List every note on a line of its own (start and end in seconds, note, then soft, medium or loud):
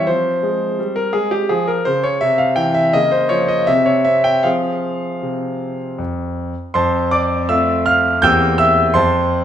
0.07 0.36 F3 soft
0.07 2.19 C4 soft
0.07 0.96 C5 medium
0.43 0.71 G#3 soft
0.79 1.08 G3 soft
0.96 1.14 A#4 medium
1.13 1.43 G#3 soft
1.13 1.32 G#4 medium
1.31 1.50 G4 medium
1.49 1.79 F3 medium
1.49 1.68 G#4 medium
1.67 1.86 A#4 medium
1.85 2.15 C#3 medium
1.85 2.04 C5 medium
2.04 2.22 C#5 medium
2.21 2.51 C3 medium
2.21 2.90 C4 soft
2.21 2.39 E5 medium
2.38 2.57 F5 medium
2.56 2.86 E3 soft
2.56 2.75 G5 medium
2.74 2.94 E5 medium
2.93 3.23 C#3 medium
2.93 3.64 A#3 soft
2.93 3.12 D#5 medium
3.12 3.31 C5 medium
3.29 3.60 F3 soft
3.29 3.49 C#5 medium
3.48 3.68 D#5 medium
3.67 3.99 C3 medium
3.67 4.04 C4 soft
3.67 3.87 E5 medium
3.86 4.06 C#5 medium
4.04 4.37 C4 medium
4.04 4.25 E5 medium
4.24 4.44 G5 medium
4.43 4.99 F3 soft
4.43 5.07 C4 soft
4.43 5.07 G#4 soft
4.43 5.98 F5 medium
5.22 5.76 C3 soft
5.98 6.52 F2 soft
6.74 7.47 F2 medium
6.74 7.10 C5 medium
6.74 7.10 A5 medium
6.74 7.12 C6 medium
7.11 7.47 D5 medium
7.11 7.49 D6 medium
7.49 8.19 A3 soft
7.49 8.19 C4 soft
7.49 8.19 F4 soft
7.49 7.84 E5 medium
7.49 7.86 E6 medium
7.86 8.21 F5 medium
7.86 8.23 F6 medium
8.22 8.93 E2 medium
8.22 8.91 A#3 soft
8.22 8.92 C4 soft
8.22 8.92 G4 soft
8.22 8.57 G5 medium
8.22 8.57 E6 medium
8.22 8.59 G6 loud
8.58 8.93 E5 medium
8.58 8.95 E6 loud
8.94 9.44 F2 medium
8.94 9.44 C5 medium
8.94 9.44 A5 medium
8.94 9.44 C6 medium